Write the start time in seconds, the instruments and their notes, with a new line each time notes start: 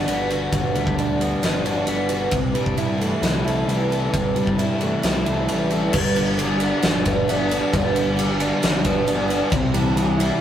Already playing: overdriven electric guitar G3 B3 D4 F#4, twelve-string acoustic guitar F#4
0.08 picked electric bass G1, overdriven electric guitar B3, twelve-string acoustic guitar B4, ride
0.30 overdriven electric guitar D3 F#4, twelve-string acoustic guitar B4, ride
0.52 picked electric bass G1, overdriven electric guitar G2 G3, twelve-string acoustic guitar B4, kick, ride
0.74 picked electric bass D2, overdriven electric guitar B3, twelve-string acoustic guitar A4, ride
0.87 kick
0.98 overdriven electric guitar D4, twelve-string acoustic guitar G4, ride
1.20 overdriven electric guitar G3 B3, twelve-string acoustic guitar F#4, ride
1.42 picked electric bass G1, overdriven electric guitar D4, twelve-string acoustic guitar F#4, snare, ride
1.64 picked electric bass G1, overdriven electric guitar D4 F#4, twelve-string acoustic guitar A4, ride
1.87 picked electric bass G1, overdriven electric guitar B3, twelve-string acoustic guitar B4, ride
2.09 overdriven electric guitar D3 F#4, twelve-string acoustic guitar B4, ride
2.31 picked electric bass C2, overdriven electric guitar C3, twelve-string acoustic guitar B4, kick, ride
2.53 picked electric bass G2, overdriven electric guitar G3, twelve-string acoustic guitar A4, ride
2.66 kick
2.77 overdriven electric guitar E4, twelve-string acoustic guitar G4, ride
2.98 overdriven electric guitar E3 A3, twelve-string acoustic guitar F#4, ride
3.22 picked electric bass C2, overdriven electric guitar G3 E4, twelve-string acoustic guitar G4, snare, ride
3.44 picked electric bass C2, overdriven electric guitar E4 A4, twelve-string acoustic guitar A4, ride
3.67 picked electric bass C2, overdriven electric guitar G3, twelve-string acoustic guitar B4, ride
3.89 overdriven electric guitar C3 A4, twelve-string acoustic guitar B4, ride
4.12 picked electric bass C2, overdriven electric guitar C3, twelve-string acoustic guitar B4, kick, ride
4.35 picked electric bass G2, overdriven electric guitar G3, twelve-string acoustic guitar A4, ride
4.47 kick
4.58 overdriven electric guitar E4, twelve-string acoustic guitar G4, ride
4.81 overdriven electric guitar E3 A3, twelve-string acoustic guitar F#4, ride
5.02 picked electric bass C2, overdriven electric guitar G3 E4, twelve-string acoustic guitar G4, snare, ride
5.25 picked electric bass C2, overdriven electric guitar E4 A4, twelve-string acoustic guitar A4, ride
5.48 picked electric bass A1, overdriven electric guitar G3, twelve-string acoustic guitar B4, ride
5.70 overdriven electric guitar C3 A4, twelve-string acoustic guitar B4, ride
5.93 picked electric bass G1, overdriven electric guitar G2 G3, twelve-string acoustic guitar B4, kick, crash
6.16 overdriven electric guitar D3 B3, twelve-string acoustic guitar G4, ride
6.37 overdriven electric guitar G3, twelve-string acoustic guitar D5, ride
6.60 overdriven electric guitar B3 D4, twelve-string acoustic guitar F#4, ride
6.83 picked electric bass G1, overdriven electric guitar G3, twelve-string acoustic guitar G4, snare, ride
7.05 overdriven electric guitar B3 D4, twelve-string acoustic guitar B4, kick, ride
7.28 overdriven electric guitar B3 D4, twelve-string acoustic guitar E5, ride
7.49 overdriven electric guitar B3 D4, twelve-string acoustic guitar D5, ride
7.73 picked electric bass G1, overdriven electric guitar G2 G3, twelve-string acoustic guitar B4, kick, ride
7.95 overdriven electric guitar D3 B3, twelve-string acoustic guitar G4, ride
8.17 overdriven electric guitar G3, twelve-string acoustic guitar D5, ride
8.40 overdriven electric guitar B3 D4, twelve-string acoustic guitar F#4, ride
8.62 picked electric bass G1, overdriven electric guitar G3, twelve-string acoustic guitar G4, snare, ride
8.84 overdriven electric guitar B3 D4, twelve-string acoustic guitar B4, kick, ride
9.07 overdriven electric guitar B3 D4, twelve-string acoustic guitar E5, ride
9.28 overdriven electric guitar B3 D4, twelve-string acoustic guitar D5, ride
9.50 picked electric bass C2, overdriven electric guitar C3, twelve-string acoustic guitar C5, kick, ride
9.74 overdriven electric guitar E3 G3, twelve-string acoustic guitar A4, ride
9.96 overdriven electric guitar E3 G3, twelve-string acoustic guitar E5, ride
10.18 overdriven electric guitar G3 E4, twelve-string acoustic guitar G4, ride